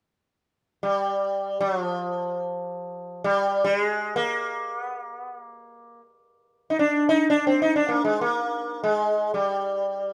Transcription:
0.83 1.60 G3 medium
1.60 1.79 F#3 medium
1.79 3.24 F3 medium
3.24 3.64 G3 medium
3.64 3.79 G3 medium
3.79 4.16 G#3 medium
4.16 4.81 A#3 medium
4.81 4.99 B3 medium
4.99 5.18 A#3 medium
5.18 5.36 B3 medium
5.36 6.00 A#3 medium
6.70 6.78 D#4 medium
6.79 7.06 D4 medium
7.09 7.29 D#4 medium
7.30 7.46 D4 medium
7.47 7.61 C4 medium
7.62 7.75 D#4 medium
7.76 7.89 D4 medium
7.89 8.04 A#3 medium
8.05 8.21 G#3 medium
8.21 8.83 A#3 medium
8.84 9.34 G#3 medium
9.34 10.13 G3 medium

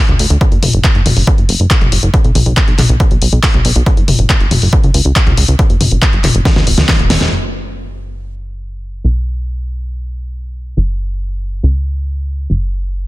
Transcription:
0.09 0.16 D2 medium
0.09 closed hi-hat soft
0.09 mid tom medium
0.19 0.26 D2 loud
0.19 open hi-hat loud
0.30 0.37 D2 medium
0.30 closed hi-hat soft
0.41 kick loud
0.41 closed hi-hat soft
0.52 0.59 F#1 medium
0.52 closed hi-hat soft
0.63 0.70 F#1 loud
0.63 open hi-hat loud
0.63 mid tom medium
0.73 0.80 F#1 medium
0.73 closed hi-hat medium
0.84 kick loud
0.84 clap loud
0.84 closed hi-hat soft
0.95 1.02 F#1 medium
0.95 closed hi-hat soft
1.06 1.13 F#1 medium
1.06 open hi-hat loud
1.06 mid tom medium
1.17 1.24 F#1 medium
1.17 open hi-hat medium
1.27 kick loud
1.27 closed hi-hat medium
1.38 1.45 F#1 medium
1.38 closed hi-hat soft
1.49 1.56 F#1 loud
1.49 open hi-hat loud
1.60 1.67 F#1 medium
1.60 closed hi-hat soft
1.71 kick loud
1.71 clap loud
1.71 closed hi-hat soft
1.81 1.88 F#1 medium
1.81 closed hi-hat soft
1.81 mid tom medium
1.92 1.99 F#1 loud
1.92 open hi-hat loud
2.03 2.10 F#1 medium
2.03 closed hi-hat soft
2.14 kick loud
2.14 closed hi-hat medium
2.24 2.31 B1 medium
2.24 closed hi-hat soft
2.35 2.42 B1 loud
2.35 open hi-hat loud
2.35 mid tom medium
2.46 2.53 B1 medium
2.46 closed hi-hat medium
2.57 kick loud
2.57 clap loud
2.57 closed hi-hat medium
2.68 2.75 B1 medium
2.68 closed hi-hat soft
2.78 2.85 B1 medium
2.78 clap soft
2.78 open hi-hat loud
2.78 mid tom medium
2.89 2.96 B1 medium
2.89 closed hi-hat medium
3.00 kick loud
3.00 closed hi-hat medium
3.11 3.18 B1 medium
3.11 closed hi-hat soft
3.22 3.29 B1 loud
3.22 open hi-hat loud
3.32 3.39 B1 medium
3.32 closed hi-hat soft
3.43 kick loud
3.43 clap loud
3.43 open hi-hat medium
3.54 3.61 B1 medium
3.54 closed hi-hat soft
3.54 mid tom medium
3.65 3.72 B1 loud
3.65 open hi-hat loud
3.76 3.83 B1 medium
3.76 closed hi-hat soft
3.86 kick loud
3.86 closed hi-hat medium
3.97 4.04 F#1 medium
3.97 closed hi-hat soft
4.08 4.15 F#1 loud
4.08 open hi-hat loud
4.08 mid tom medium
4.19 4.26 F#1 medium
4.19 closed hi-hat medium
4.30 kick loud
4.30 clap loud
4.30 closed hi-hat medium
4.40 4.47 F#1 medium
4.40 closed hi-hat soft
4.51 4.58 F#1 loud
4.51 open hi-hat loud
4.51 mid tom medium
4.62 4.69 F#1 medium
4.62 open hi-hat medium
4.73 kick loud
4.73 closed hi-hat medium
4.83 4.90 C#2 medium
4.83 closed hi-hat soft
4.94 5.01 C#2 loud
4.94 open hi-hat loud
5.05 5.12 C#2 medium
5.05 closed hi-hat medium
5.16 kick loud
5.16 clap loud
5.16 closed hi-hat medium
5.27 5.34 C#2 medium
5.27 closed hi-hat soft
5.27 mid tom medium
5.37 5.44 C#2 loud
5.37 open hi-hat loud
5.48 5.55 C#2 loud
5.48 closed hi-hat medium
5.59 kick loud
5.59 closed hi-hat medium
5.70 5.77 F#1 medium
5.70 closed hi-hat soft
5.81 5.88 F#1 loud
5.81 open hi-hat loud
5.81 mid tom medium
5.91 5.98 F#1 medium
5.91 closed hi-hat medium
6.02 kick loud
6.02 clap loud
6.02 closed hi-hat medium
6.13 6.20 F#1 medium
6.13 closed hi-hat soft
6.24 6.31 F#1 medium
6.24 clap soft
6.24 open hi-hat loud
6.24 mid tom medium
6.35 6.42 F#1 medium
6.35 closed hi-hat medium
6.45 kick loud
6.45 snare medium
6.45 closed hi-hat medium
6.56 6.63 D2 medium
6.56 snare medium
6.56 closed hi-hat soft
6.67 6.74 D1 loud
6.67 open hi-hat loud
6.78 6.85 D2 medium
6.78 snare medium
6.78 closed hi-hat medium
6.89 kick loud
6.89 snare medium
6.89 clap loud
6.89 open hi-hat medium
6.99 7.06 E1 medium
6.99 closed hi-hat soft
6.99 mid tom medium
7.10 7.17 E1 loud
7.10 snare loud
7.10 open hi-hat loud
7.21 7.28 E1 medium
7.21 snare medium
7.21 closed hi-hat medium
7.32 9.02 F#1 medium
9.04 10.75 B1 medium
10.77 11.61 F#1 medium
11.63 12.48 C#2 medium
12.50 13.07 F#1 medium

